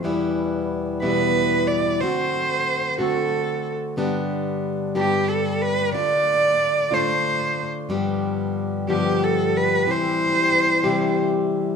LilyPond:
<<
  \new Staff \with { instrumentName = "Cello" } { \time 6/8 \key g \mixolydian \tempo 4. = 61 r4. b'4 d''8 | c''4. a'4 r8 | r4. g'8 a'8 b'8 | d''4. c''4 r8 |
r4. g'8 a'8 b'8 | c''2 r4 | }
  \new Staff \with { instrumentName = "Steel-string acoustic guitar" } { \clef bass \time 6/8 \key g \mixolydian <e, b, e g b e'>4. <e, b, e g b e'>4. | <d a c' fis'>4. <d a c' fis'>4. | <g, d g b d' g'>4. <g, d g b d' g'>4. | <d a d' f'>4. <d a d' f'>4. |
<g, d f g b g'>4. <g, d f g b g'>4. | <c e g e' g'>4. <c e g e' g'>4. | }
>>